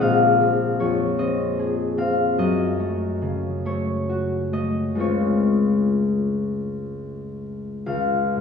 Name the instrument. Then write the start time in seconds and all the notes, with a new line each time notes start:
harp
Already playing: C4 G#4 C5 C#5 D#5
0.01 A#1 F5
0.41 C4
0.80 F2 C#5
1.18 C4 D#5
1.59 G#4
1.97 C4 F5
2.38 F#2 D#5
2.80 A3
3.22 C#3
3.65 A3 C#5
4.09 F#4
4.53 A3 D#5
4.95 C#2 G#3 C4 F4
5.00 C#5
7.86 C#2 F5
8.36 G#2